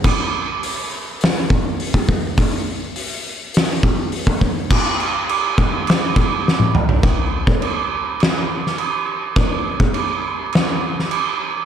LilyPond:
\new DrumStaff \with { instrumentName = "Drums" } \drummode { \time 4/4 \tempo 4 = 103 <cymc bd>4 hho4 <hho sn>8 bd8 hho16 bd16 bd8 | <hho bd>4 hho4 <hho sn>8 bd8 hho16 bd16 bd8 | <cymc bd>8 cymc8 cymc8 <cymc bd>8 <cymc sn>8 <cymc bd>8 sn16 tommh16 toml16 tomfh16 | <cymc bd>8. bd16 cymc4 <cymc sn>8. sn16 cymc4 |
<cymc bd>8. bd16 cymc4 <cymc sn>8. sn16 cymc4 | }